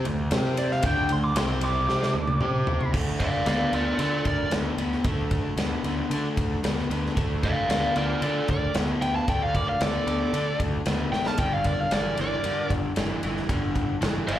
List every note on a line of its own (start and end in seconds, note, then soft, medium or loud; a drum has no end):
0.05 0.30 D2 medium
0.05 0.26 D3 medium
0.05 0.27 A3 medium
0.05 ride medium
0.31 0.80 C3 loud
0.31 0.83 C4 medium
0.31 0.83 G4 loud
0.31 0.84 C5 loud
0.31 snare loud
0.31 ride medium
0.45 snare soft
0.57 0.71 D5 loud
0.57 ride medium
0.71 0.85 F5 loud
0.71 snare soft
0.83 1.08 D2 medium
0.83 1.09 D3 loud
0.83 1.10 A3 loud
0.83 1.10 D4 loud
0.83 1.10 G5 loud
0.83 kick loud
0.83 ride loud
1.09 1.34 D2 medium
1.09 1.32 D3 medium
1.09 1.32 A3 medium
1.09 1.24 C6 medium
1.09 ride medium
1.24 1.37 D6 medium
1.36 1.85 C2 loud
1.36 1.88 C3 medium
1.36 1.88 G3 loud
1.36 1.87 C4 loud
1.36 1.63 C6 loud
1.36 snare loud
1.36 ride loud
1.61 2.91 D6 loud
1.61 ride medium
1.88 2.13 C3 loud
1.88 2.14 C4 loud
1.88 2.15 G4 loud
1.88 2.15 C5 loud
1.88 snare medium
2.03 snare medium
2.14 2.39 D2 medium
2.14 2.36 D3 medium
2.14 2.36 A3 medium
2.27 high tom medium
2.40 2.90 C3 loud
2.40 2.93 C4 loud
2.40 2.94 G4 loud
2.40 2.94 C5 loud
2.40 mid tom medium
2.67 floor tom loud
2.81 floor tom medium
2.93 3.28 D2 medium
2.93 3.41 D3 medium
2.93 3.41 A3 medium
2.93 kick loud
2.93 crash loud
3.20 3.46 D5 medium
3.20 3.47 D5 medium
3.20 3.46 F5 medium
3.20 kick medium
3.20 ride medium
3.46 3.63 D2 medium
3.46 3.70 D3 medium
3.46 3.70 B3 medium
3.46 3.72 D5 medium
3.46 3.73 F5 medium
3.46 snare loud
3.46 ride medium
3.72 3.90 D2 medium
3.72 3.97 D3 medium
3.72 3.97 B3 medium
3.72 3.99 F4 medium
3.72 3.98 A#4 medium
3.72 3.99 D5 medium
3.72 ride medium
3.98 4.46 D3 medium
3.98 4.16 D3 medium
3.98 4.47 A3 medium
3.98 4.24 F4 medium
3.98 4.24 A4 medium
3.98 4.26 D5 medium
3.98 ride medium
4.25 4.42 D2 medium
4.25 4.50 A#4 medium
4.25 4.52 D5 medium
4.25 kick medium
4.25 ride medium
4.51 4.69 D2 medium
4.51 4.76 D3 medium
4.51 4.75 B3 medium
4.51 snare loud
4.51 ride medium
4.77 4.95 D2 medium
4.77 5.02 D3 medium
4.77 5.02 B3 medium
4.77 ride medium
4.92 snare soft
5.04 5.39 D2 medium
5.04 5.53 D3 medium
5.04 5.53 A3 medium
5.04 kick loud
5.04 ride medium
5.31 kick medium
5.31 ride medium
5.56 5.74 D2 medium
5.56 5.82 D3 medium
5.56 5.82 B3 medium
5.56 snare loud
5.56 ride medium
5.83 6.01 D2 medium
5.83 6.08 D3 medium
5.83 6.09 B3 medium
5.83 ride medium
6.10 6.27 D3 medium
6.10 6.59 D3 medium
6.10 6.59 A3 medium
6.10 ride medium
6.37 6.54 D2 medium
6.37 kick medium
6.37 ride medium
6.63 6.81 D2 medium
6.63 6.88 D3 medium
6.63 6.87 B3 medium
6.63 snare loud
6.63 ride medium
6.79 snare soft
6.89 7.07 D2 medium
6.89 7.14 D3 medium
6.89 7.14 B3 medium
6.89 ride medium
7.06 snare soft
7.16 7.51 D2 medium
7.16 7.64 D3 medium
7.16 7.64 A3 medium
7.16 kick loud
7.16 ride medium
7.43 7.69 D5 medium
7.43 7.70 F5 loud
7.43 kick medium
7.43 ride medium
7.68 7.86 D2 medium
7.68 7.93 D3 medium
7.68 7.93 B3 medium
7.68 7.94 D5 medium
7.68 7.95 D5 medium
7.68 7.96 F5 medium
7.68 snare loud
7.68 ride medium
7.96 8.13 D2 medium
7.96 8.20 D3 medium
7.96 8.20 B3 medium
7.96 8.21 F4 medium
7.96 8.21 A#4 medium
7.96 8.22 D5 medium
7.96 ride medium
8.22 8.39 D3 medium
8.22 8.70 D3 medium
8.22 8.70 A3 medium
8.22 8.47 F4 medium
8.22 8.48 A4 medium
8.22 8.49 D5 medium
8.22 ride medium
8.48 8.66 D2 medium
8.48 8.74 A#4 medium
8.48 8.75 D5 loud
8.48 kick medium
8.48 ride medium
8.74 8.92 D2 medium
8.74 8.99 D3 medium
8.74 8.99 B3 medium
8.74 snare loud
8.74 ride medium
9.00 9.19 D2 medium
9.00 9.25 D3 medium
9.00 9.25 B3 medium
9.00 9.14 E5 medium
9.00 9.15 G5 loud
9.00 ride medium
9.15 9.29 F5 medium
9.15 9.29 A5 medium
9.28 9.62 D2 medium
9.28 9.75 D3 medium
9.28 9.75 A3 medium
9.28 9.41 D5 medium
9.28 9.43 G5 loud
9.28 kick loud
9.28 ride medium
9.42 9.55 D5 medium
9.42 9.56 F5 medium
9.55 9.67 A#4 medium
9.55 9.68 D5 medium
9.55 kick medium
9.55 ride medium
9.68 9.82 D5 medium
9.68 9.82 F5 medium
9.80 9.98 D2 medium
9.80 10.04 D3 medium
9.80 10.04 B3 medium
9.80 10.07 A4 medium
9.80 10.07 D5 medium
9.80 snare loud
9.80 ride medium
10.06 10.24 D2 medium
10.06 10.31 D3 medium
10.06 10.31 B3 medium
10.06 10.57 A4 medium
10.06 10.59 D5 loud
10.06 ride medium
10.33 10.81 D3 medium
10.33 10.50 D3 medium
10.33 10.81 A3 medium
10.33 ride medium
10.59 10.77 D2 medium
10.59 kick medium
10.59 ride medium
10.86 11.03 D2 medium
10.86 11.10 D3 medium
10.86 11.10 B3 medium
10.86 snare loud
10.86 ride medium
11.12 11.29 A1 medium
11.12 11.36 D3 medium
11.12 11.36 B3 medium
11.12 11.27 E5 medium
11.12 11.26 G5 medium
11.12 snare medium
11.26 11.39 F5 medium
11.26 11.39 A5 medium
11.26 snare medium
11.38 11.73 G1 medium
11.38 11.86 G2 medium
11.38 11.86 D3 medium
11.38 11.51 D5 medium
11.38 11.53 G5 medium
11.38 kick loud
11.38 ride medium
11.52 11.65 D5 medium
11.52 11.65 F5 medium
11.64 11.77 A#4 medium
11.64 11.78 D5 medium
11.64 kick medium
11.64 ride medium
11.80 11.91 D5 medium
11.80 11.92 F5 medium
11.91 12.09 G1 medium
11.91 12.15 G2 medium
11.91 12.15 E3 medium
11.91 12.16 A#4 medium
11.91 12.18 D5 medium
11.91 snare loud
11.91 ride medium
12.17 12.35 G1 medium
12.17 12.42 G2 medium
12.17 12.42 E3 medium
12.17 12.68 A#4 medium
12.17 12.70 D5 loud
12.17 ride medium
12.44 12.61 G2 medium
12.44 12.92 G2 medium
12.44 12.92 D3 loud
12.44 ride medium
12.70 12.87 G1 medium
12.70 kick medium
12.70 ride medium
12.96 13.14 G1 medium
12.96 13.20 G2 medium
12.96 13.21 E3 medium
12.96 snare loud
12.96 ride medium
13.23 13.40 G1 medium
13.23 13.47 G2 medium
13.23 13.47 E3 medium
13.23 ride medium
13.37 snare soft
13.49 13.83 G1 medium
13.49 13.96 G2 medium
13.49 13.97 D3 medium
13.49 kick loud
13.49 ride medium
13.76 kick medium
13.76 ride medium
14.01 14.19 G1 medium
14.01 14.25 G2 medium
14.01 14.25 E3 medium
14.01 snare loud
14.01 ride medium
14.27 14.39 G1 medium
14.27 14.39 G2 medium
14.27 14.39 E3 medium
14.27 14.39 D5 medium
14.27 14.39 F5 loud
14.27 ride medium